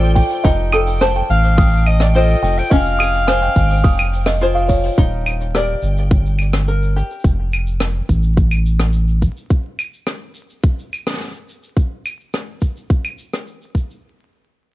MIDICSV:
0, 0, Header, 1, 7, 480
1, 0, Start_track
1, 0, Tempo, 566038
1, 377, Time_signature, 4, 2, 24, 8
1, 12506, End_track
2, 0, Start_track
2, 0, Title_t, "Music box"
2, 0, Program_c, 0, 10
2, 130, Note_on_c, 0, 79, 80
2, 247, Note_off_c, 0, 79, 0
2, 371, Note_on_c, 0, 75, 81
2, 487, Note_off_c, 0, 75, 0
2, 617, Note_on_c, 0, 87, 84
2, 731, Note_off_c, 0, 87, 0
2, 861, Note_on_c, 0, 81, 95
2, 927, Note_off_c, 0, 81, 0
2, 984, Note_on_c, 0, 79, 78
2, 1094, Note_off_c, 0, 79, 0
2, 1337, Note_on_c, 0, 87, 81
2, 1451, Note_off_c, 0, 87, 0
2, 1703, Note_on_c, 0, 75, 75
2, 1813, Note_off_c, 0, 75, 0
2, 2058, Note_on_c, 0, 79, 78
2, 2171, Note_off_c, 0, 79, 0
2, 2292, Note_on_c, 0, 75, 83
2, 2408, Note_off_c, 0, 75, 0
2, 2534, Note_on_c, 0, 87, 75
2, 2649, Note_off_c, 0, 87, 0
2, 2776, Note_on_c, 0, 80, 105
2, 2844, Note_off_c, 0, 80, 0
2, 2900, Note_on_c, 0, 79, 77
2, 3012, Note_off_c, 0, 79, 0
2, 3254, Note_on_c, 0, 87, 83
2, 3369, Note_off_c, 0, 87, 0
2, 3615, Note_on_c, 0, 75, 83
2, 3730, Note_off_c, 0, 75, 0
2, 3857, Note_on_c, 0, 77, 76
2, 3971, Note_off_c, 0, 77, 0
2, 3973, Note_on_c, 0, 73, 104
2, 4088, Note_off_c, 0, 73, 0
2, 12506, End_track
3, 0, Start_track
3, 0, Title_t, "Synth texture"
3, 0, Program_c, 1, 99
3, 0, Note_on_c, 1, 79, 85
3, 4218, Note_off_c, 1, 79, 0
3, 12506, End_track
4, 0, Start_track
4, 0, Title_t, "Clarinet"
4, 0, Program_c, 2, 71
4, 1104, Note_on_c, 2, 77, 103
4, 1587, Note_on_c, 2, 75, 94
4, 1599, Note_off_c, 2, 77, 0
4, 1701, Note_off_c, 2, 75, 0
4, 1711, Note_on_c, 2, 74, 89
4, 1762, Note_off_c, 2, 74, 0
4, 1832, Note_on_c, 2, 75, 97
4, 2191, Note_on_c, 2, 79, 98
4, 2203, Note_off_c, 2, 75, 0
4, 2303, Note_off_c, 2, 79, 0
4, 2317, Note_on_c, 2, 77, 109
4, 3712, Note_off_c, 2, 77, 0
4, 12506, End_track
5, 0, Start_track
5, 0, Title_t, "Five-string banjo"
5, 0, Program_c, 3, 105
5, 0, Note_on_c, 3, 62, 92
5, 0, Note_on_c, 3, 65, 66
5, 0, Note_on_c, 3, 69, 61
5, 0, Note_on_c, 3, 72, 65
5, 375, Note_off_c, 3, 62, 0
5, 381, Note_on_c, 3, 63, 88
5, 619, Note_off_c, 3, 69, 0
5, 623, Note_on_c, 3, 69, 66
5, 856, Note_off_c, 3, 72, 0
5, 860, Note_on_c, 3, 72, 75
5, 1086, Note_off_c, 3, 65, 0
5, 1815, Note_off_c, 3, 69, 0
5, 1822, Note_on_c, 3, 65, 66
5, 1826, Note_on_c, 3, 69, 64
5, 1827, Note_off_c, 3, 72, 0
5, 1830, Note_on_c, 3, 72, 69
5, 2299, Note_off_c, 3, 63, 0
5, 2302, Note_on_c, 3, 61, 92
5, 2349, Note_off_c, 3, 69, 0
5, 2546, Note_on_c, 3, 68, 64
5, 2783, Note_off_c, 3, 72, 0
5, 2786, Note_on_c, 3, 72, 78
5, 3009, Note_off_c, 3, 65, 0
5, 3737, Note_off_c, 3, 68, 0
5, 3741, Note_off_c, 3, 72, 0
5, 3743, Note_on_c, 3, 65, 63
5, 3747, Note_on_c, 3, 68, 67
5, 3754, Note_on_c, 3, 72, 73
5, 4219, Note_off_c, 3, 61, 0
5, 4226, Note_on_c, 3, 63, 85
5, 4267, Note_off_c, 3, 65, 0
5, 4270, Note_off_c, 3, 68, 0
5, 4273, Note_off_c, 3, 72, 0
5, 4708, Note_on_c, 3, 67, 63
5, 4713, Note_on_c, 3, 70, 61
5, 4717, Note_on_c, 3, 74, 64
5, 5654, Note_off_c, 3, 70, 0
5, 5664, Note_on_c, 3, 70, 61
5, 5894, Note_off_c, 3, 67, 0
5, 5904, Note_on_c, 3, 67, 58
5, 6141, Note_off_c, 3, 63, 0
5, 6188, Note_off_c, 3, 67, 0
5, 6188, Note_off_c, 3, 70, 0
5, 6195, Note_off_c, 3, 74, 0
5, 12506, End_track
6, 0, Start_track
6, 0, Title_t, "Analog synth bass"
6, 0, Program_c, 4, 38
6, 0, Note_on_c, 4, 33, 94
6, 190, Note_off_c, 4, 33, 0
6, 378, Note_on_c, 4, 29, 92
6, 1032, Note_off_c, 4, 29, 0
6, 1101, Note_on_c, 4, 33, 88
6, 1994, Note_off_c, 4, 33, 0
6, 2058, Note_on_c, 4, 29, 105
6, 2216, Note_off_c, 4, 29, 0
6, 2299, Note_on_c, 4, 29, 89
6, 2953, Note_off_c, 4, 29, 0
6, 3020, Note_on_c, 4, 32, 94
6, 3251, Note_off_c, 4, 32, 0
6, 3256, Note_on_c, 4, 29, 100
6, 4151, Note_off_c, 4, 29, 0
6, 4223, Note_on_c, 4, 27, 85
6, 4875, Note_off_c, 4, 27, 0
6, 4940, Note_on_c, 4, 31, 85
6, 5953, Note_off_c, 4, 31, 0
6, 6141, Note_on_c, 4, 29, 90
6, 6794, Note_off_c, 4, 29, 0
6, 6860, Note_on_c, 4, 33, 80
6, 7873, Note_off_c, 4, 33, 0
6, 12506, End_track
7, 0, Start_track
7, 0, Title_t, "Drums"
7, 14, Note_on_c, 9, 82, 47
7, 99, Note_off_c, 9, 82, 0
7, 136, Note_on_c, 9, 46, 69
7, 137, Note_on_c, 9, 36, 56
7, 137, Note_on_c, 9, 82, 77
7, 221, Note_off_c, 9, 36, 0
7, 221, Note_off_c, 9, 46, 0
7, 222, Note_off_c, 9, 82, 0
7, 251, Note_on_c, 9, 82, 45
7, 254, Note_on_c, 9, 46, 53
7, 336, Note_off_c, 9, 82, 0
7, 339, Note_off_c, 9, 46, 0
7, 372, Note_on_c, 9, 46, 72
7, 376, Note_on_c, 9, 82, 61
7, 378, Note_on_c, 9, 36, 106
7, 457, Note_off_c, 9, 46, 0
7, 461, Note_off_c, 9, 82, 0
7, 462, Note_off_c, 9, 36, 0
7, 615, Note_on_c, 9, 75, 82
7, 618, Note_on_c, 9, 82, 86
7, 699, Note_off_c, 9, 75, 0
7, 703, Note_off_c, 9, 82, 0
7, 737, Note_on_c, 9, 46, 59
7, 741, Note_on_c, 9, 82, 55
7, 822, Note_off_c, 9, 46, 0
7, 826, Note_off_c, 9, 82, 0
7, 855, Note_on_c, 9, 46, 67
7, 858, Note_on_c, 9, 37, 70
7, 862, Note_on_c, 9, 82, 58
7, 940, Note_off_c, 9, 46, 0
7, 943, Note_off_c, 9, 37, 0
7, 947, Note_off_c, 9, 82, 0
7, 1102, Note_on_c, 9, 82, 84
7, 1187, Note_off_c, 9, 82, 0
7, 1215, Note_on_c, 9, 46, 59
7, 1226, Note_on_c, 9, 82, 53
7, 1300, Note_off_c, 9, 46, 0
7, 1311, Note_off_c, 9, 82, 0
7, 1336, Note_on_c, 9, 82, 53
7, 1340, Note_on_c, 9, 36, 119
7, 1345, Note_on_c, 9, 46, 65
7, 1421, Note_off_c, 9, 82, 0
7, 1425, Note_off_c, 9, 36, 0
7, 1429, Note_off_c, 9, 46, 0
7, 1462, Note_on_c, 9, 82, 44
7, 1547, Note_off_c, 9, 82, 0
7, 1579, Note_on_c, 9, 82, 68
7, 1581, Note_on_c, 9, 75, 59
7, 1664, Note_off_c, 9, 82, 0
7, 1666, Note_off_c, 9, 75, 0
7, 1697, Note_on_c, 9, 37, 68
7, 1701, Note_on_c, 9, 46, 53
7, 1705, Note_on_c, 9, 82, 51
7, 1782, Note_off_c, 9, 37, 0
7, 1786, Note_off_c, 9, 46, 0
7, 1790, Note_off_c, 9, 82, 0
7, 1827, Note_on_c, 9, 82, 53
7, 1911, Note_off_c, 9, 82, 0
7, 1946, Note_on_c, 9, 82, 46
7, 2031, Note_off_c, 9, 82, 0
7, 2068, Note_on_c, 9, 82, 76
7, 2071, Note_on_c, 9, 46, 67
7, 2152, Note_off_c, 9, 82, 0
7, 2156, Note_off_c, 9, 46, 0
7, 2185, Note_on_c, 9, 46, 55
7, 2185, Note_on_c, 9, 82, 44
7, 2270, Note_off_c, 9, 46, 0
7, 2270, Note_off_c, 9, 82, 0
7, 2300, Note_on_c, 9, 36, 112
7, 2301, Note_on_c, 9, 46, 69
7, 2302, Note_on_c, 9, 82, 64
7, 2385, Note_off_c, 9, 36, 0
7, 2386, Note_off_c, 9, 46, 0
7, 2387, Note_off_c, 9, 82, 0
7, 2425, Note_on_c, 9, 82, 45
7, 2509, Note_off_c, 9, 82, 0
7, 2537, Note_on_c, 9, 82, 81
7, 2544, Note_on_c, 9, 75, 93
7, 2622, Note_off_c, 9, 82, 0
7, 2629, Note_off_c, 9, 75, 0
7, 2661, Note_on_c, 9, 82, 52
7, 2664, Note_on_c, 9, 46, 57
7, 2745, Note_off_c, 9, 82, 0
7, 2749, Note_off_c, 9, 46, 0
7, 2779, Note_on_c, 9, 46, 67
7, 2780, Note_on_c, 9, 37, 79
7, 2781, Note_on_c, 9, 82, 55
7, 2864, Note_off_c, 9, 46, 0
7, 2865, Note_off_c, 9, 37, 0
7, 2866, Note_off_c, 9, 82, 0
7, 2903, Note_on_c, 9, 82, 52
7, 2988, Note_off_c, 9, 82, 0
7, 3019, Note_on_c, 9, 36, 58
7, 3021, Note_on_c, 9, 46, 52
7, 3021, Note_on_c, 9, 82, 86
7, 3104, Note_off_c, 9, 36, 0
7, 3106, Note_off_c, 9, 46, 0
7, 3106, Note_off_c, 9, 82, 0
7, 3141, Note_on_c, 9, 82, 48
7, 3142, Note_on_c, 9, 46, 66
7, 3226, Note_off_c, 9, 82, 0
7, 3227, Note_off_c, 9, 46, 0
7, 3259, Note_on_c, 9, 36, 113
7, 3261, Note_on_c, 9, 46, 73
7, 3261, Note_on_c, 9, 82, 57
7, 3343, Note_off_c, 9, 36, 0
7, 3346, Note_off_c, 9, 46, 0
7, 3346, Note_off_c, 9, 82, 0
7, 3385, Note_on_c, 9, 75, 83
7, 3387, Note_on_c, 9, 82, 48
7, 3469, Note_off_c, 9, 75, 0
7, 3472, Note_off_c, 9, 82, 0
7, 3502, Note_on_c, 9, 46, 49
7, 3508, Note_on_c, 9, 82, 73
7, 3587, Note_off_c, 9, 46, 0
7, 3593, Note_off_c, 9, 82, 0
7, 3614, Note_on_c, 9, 37, 72
7, 3616, Note_on_c, 9, 82, 45
7, 3620, Note_on_c, 9, 46, 60
7, 3699, Note_off_c, 9, 37, 0
7, 3701, Note_off_c, 9, 82, 0
7, 3705, Note_off_c, 9, 46, 0
7, 3733, Note_on_c, 9, 82, 58
7, 3818, Note_off_c, 9, 82, 0
7, 3863, Note_on_c, 9, 82, 47
7, 3948, Note_off_c, 9, 82, 0
7, 3976, Note_on_c, 9, 46, 67
7, 3978, Note_on_c, 9, 82, 85
7, 3980, Note_on_c, 9, 36, 53
7, 4060, Note_off_c, 9, 46, 0
7, 4063, Note_off_c, 9, 82, 0
7, 4065, Note_off_c, 9, 36, 0
7, 4102, Note_on_c, 9, 46, 61
7, 4103, Note_on_c, 9, 82, 48
7, 4187, Note_off_c, 9, 46, 0
7, 4187, Note_off_c, 9, 82, 0
7, 4221, Note_on_c, 9, 36, 115
7, 4222, Note_on_c, 9, 82, 59
7, 4306, Note_off_c, 9, 36, 0
7, 4307, Note_off_c, 9, 82, 0
7, 4463, Note_on_c, 9, 75, 70
7, 4469, Note_on_c, 9, 82, 76
7, 4548, Note_off_c, 9, 75, 0
7, 4554, Note_off_c, 9, 82, 0
7, 4583, Note_on_c, 9, 82, 47
7, 4668, Note_off_c, 9, 82, 0
7, 4704, Note_on_c, 9, 37, 71
7, 4707, Note_on_c, 9, 82, 54
7, 4789, Note_off_c, 9, 37, 0
7, 4792, Note_off_c, 9, 82, 0
7, 4938, Note_on_c, 9, 82, 93
7, 5023, Note_off_c, 9, 82, 0
7, 5062, Note_on_c, 9, 82, 47
7, 5147, Note_off_c, 9, 82, 0
7, 5182, Note_on_c, 9, 36, 119
7, 5184, Note_on_c, 9, 82, 56
7, 5267, Note_off_c, 9, 36, 0
7, 5269, Note_off_c, 9, 82, 0
7, 5308, Note_on_c, 9, 82, 39
7, 5393, Note_off_c, 9, 82, 0
7, 5416, Note_on_c, 9, 75, 54
7, 5429, Note_on_c, 9, 82, 63
7, 5501, Note_off_c, 9, 75, 0
7, 5513, Note_off_c, 9, 82, 0
7, 5541, Note_on_c, 9, 37, 73
7, 5544, Note_on_c, 9, 82, 42
7, 5626, Note_off_c, 9, 37, 0
7, 5629, Note_off_c, 9, 82, 0
7, 5664, Note_on_c, 9, 82, 58
7, 5749, Note_off_c, 9, 82, 0
7, 5785, Note_on_c, 9, 82, 40
7, 5870, Note_off_c, 9, 82, 0
7, 5906, Note_on_c, 9, 82, 75
7, 5990, Note_off_c, 9, 82, 0
7, 6023, Note_on_c, 9, 82, 42
7, 6103, Note_off_c, 9, 82, 0
7, 6103, Note_on_c, 9, 82, 35
7, 6142, Note_on_c, 9, 36, 110
7, 6151, Note_off_c, 9, 82, 0
7, 6151, Note_on_c, 9, 82, 56
7, 6180, Note_off_c, 9, 82, 0
7, 6180, Note_on_c, 9, 82, 32
7, 6227, Note_off_c, 9, 36, 0
7, 6265, Note_off_c, 9, 82, 0
7, 6384, Note_on_c, 9, 82, 72
7, 6389, Note_on_c, 9, 75, 68
7, 6468, Note_off_c, 9, 82, 0
7, 6473, Note_off_c, 9, 75, 0
7, 6504, Note_on_c, 9, 82, 52
7, 6589, Note_off_c, 9, 82, 0
7, 6618, Note_on_c, 9, 37, 80
7, 6623, Note_on_c, 9, 82, 57
7, 6703, Note_off_c, 9, 37, 0
7, 6707, Note_off_c, 9, 82, 0
7, 6862, Note_on_c, 9, 36, 52
7, 6863, Note_on_c, 9, 82, 80
7, 6946, Note_off_c, 9, 36, 0
7, 6947, Note_off_c, 9, 82, 0
7, 6976, Note_on_c, 9, 82, 41
7, 7061, Note_off_c, 9, 82, 0
7, 7096, Note_on_c, 9, 82, 54
7, 7100, Note_on_c, 9, 36, 110
7, 7180, Note_off_c, 9, 82, 0
7, 7185, Note_off_c, 9, 36, 0
7, 7219, Note_on_c, 9, 75, 62
7, 7222, Note_on_c, 9, 82, 42
7, 7304, Note_off_c, 9, 75, 0
7, 7307, Note_off_c, 9, 82, 0
7, 7342, Note_on_c, 9, 82, 82
7, 7426, Note_off_c, 9, 82, 0
7, 7458, Note_on_c, 9, 37, 70
7, 7461, Note_on_c, 9, 82, 42
7, 7543, Note_off_c, 9, 37, 0
7, 7546, Note_off_c, 9, 82, 0
7, 7571, Note_on_c, 9, 82, 60
7, 7655, Note_off_c, 9, 82, 0
7, 7699, Note_on_c, 9, 82, 46
7, 7784, Note_off_c, 9, 82, 0
7, 7819, Note_on_c, 9, 82, 84
7, 7820, Note_on_c, 9, 36, 53
7, 7904, Note_off_c, 9, 82, 0
7, 7905, Note_off_c, 9, 36, 0
7, 7944, Note_on_c, 9, 82, 43
7, 8029, Note_off_c, 9, 82, 0
7, 8058, Note_on_c, 9, 82, 55
7, 8059, Note_on_c, 9, 36, 105
7, 8142, Note_off_c, 9, 82, 0
7, 8144, Note_off_c, 9, 36, 0
7, 8301, Note_on_c, 9, 75, 65
7, 8305, Note_on_c, 9, 82, 76
7, 8386, Note_off_c, 9, 75, 0
7, 8390, Note_off_c, 9, 82, 0
7, 8423, Note_on_c, 9, 82, 48
7, 8508, Note_off_c, 9, 82, 0
7, 8537, Note_on_c, 9, 37, 65
7, 8541, Note_on_c, 9, 82, 50
7, 8622, Note_off_c, 9, 37, 0
7, 8626, Note_off_c, 9, 82, 0
7, 8772, Note_on_c, 9, 82, 86
7, 8857, Note_off_c, 9, 82, 0
7, 8901, Note_on_c, 9, 82, 44
7, 8985, Note_off_c, 9, 82, 0
7, 9017, Note_on_c, 9, 82, 55
7, 9019, Note_on_c, 9, 36, 113
7, 9102, Note_off_c, 9, 82, 0
7, 9103, Note_off_c, 9, 36, 0
7, 9150, Note_on_c, 9, 82, 44
7, 9235, Note_off_c, 9, 82, 0
7, 9268, Note_on_c, 9, 75, 51
7, 9269, Note_on_c, 9, 82, 66
7, 9353, Note_off_c, 9, 75, 0
7, 9354, Note_off_c, 9, 82, 0
7, 9385, Note_on_c, 9, 37, 70
7, 9389, Note_on_c, 9, 82, 45
7, 9415, Note_off_c, 9, 37, 0
7, 9415, Note_on_c, 9, 37, 53
7, 9446, Note_off_c, 9, 37, 0
7, 9446, Note_on_c, 9, 37, 47
7, 9474, Note_off_c, 9, 37, 0
7, 9474, Note_off_c, 9, 82, 0
7, 9474, Note_on_c, 9, 37, 37
7, 9504, Note_off_c, 9, 37, 0
7, 9504, Note_on_c, 9, 37, 33
7, 9515, Note_on_c, 9, 82, 50
7, 9533, Note_off_c, 9, 37, 0
7, 9533, Note_on_c, 9, 37, 27
7, 9564, Note_off_c, 9, 37, 0
7, 9564, Note_on_c, 9, 37, 22
7, 9593, Note_off_c, 9, 37, 0
7, 9593, Note_on_c, 9, 37, 19
7, 9600, Note_off_c, 9, 82, 0
7, 9622, Note_on_c, 9, 82, 42
7, 9678, Note_off_c, 9, 37, 0
7, 9706, Note_off_c, 9, 82, 0
7, 9744, Note_on_c, 9, 82, 85
7, 9829, Note_off_c, 9, 82, 0
7, 9866, Note_on_c, 9, 82, 43
7, 9951, Note_off_c, 9, 82, 0
7, 9978, Note_on_c, 9, 36, 96
7, 9992, Note_on_c, 9, 82, 51
7, 10063, Note_off_c, 9, 36, 0
7, 10077, Note_off_c, 9, 82, 0
7, 10223, Note_on_c, 9, 75, 59
7, 10224, Note_on_c, 9, 82, 74
7, 10308, Note_off_c, 9, 75, 0
7, 10308, Note_off_c, 9, 82, 0
7, 10346, Note_on_c, 9, 82, 40
7, 10430, Note_off_c, 9, 82, 0
7, 10457, Note_on_c, 9, 82, 51
7, 10463, Note_on_c, 9, 37, 68
7, 10541, Note_off_c, 9, 82, 0
7, 10547, Note_off_c, 9, 37, 0
7, 10696, Note_on_c, 9, 82, 89
7, 10699, Note_on_c, 9, 36, 53
7, 10780, Note_off_c, 9, 82, 0
7, 10784, Note_off_c, 9, 36, 0
7, 10825, Note_on_c, 9, 82, 45
7, 10910, Note_off_c, 9, 82, 0
7, 10939, Note_on_c, 9, 36, 111
7, 10945, Note_on_c, 9, 82, 52
7, 11024, Note_off_c, 9, 36, 0
7, 11030, Note_off_c, 9, 82, 0
7, 11060, Note_on_c, 9, 82, 45
7, 11064, Note_on_c, 9, 75, 65
7, 11145, Note_off_c, 9, 82, 0
7, 11148, Note_off_c, 9, 75, 0
7, 11180, Note_on_c, 9, 82, 73
7, 11265, Note_off_c, 9, 82, 0
7, 11306, Note_on_c, 9, 82, 42
7, 11308, Note_on_c, 9, 37, 61
7, 11391, Note_off_c, 9, 82, 0
7, 11393, Note_off_c, 9, 37, 0
7, 11422, Note_on_c, 9, 82, 49
7, 11507, Note_off_c, 9, 82, 0
7, 11549, Note_on_c, 9, 82, 39
7, 11633, Note_off_c, 9, 82, 0
7, 11659, Note_on_c, 9, 36, 52
7, 11671, Note_on_c, 9, 82, 67
7, 11743, Note_off_c, 9, 36, 0
7, 11756, Note_off_c, 9, 82, 0
7, 11792, Note_on_c, 9, 82, 39
7, 11877, Note_off_c, 9, 82, 0
7, 12506, End_track
0, 0, End_of_file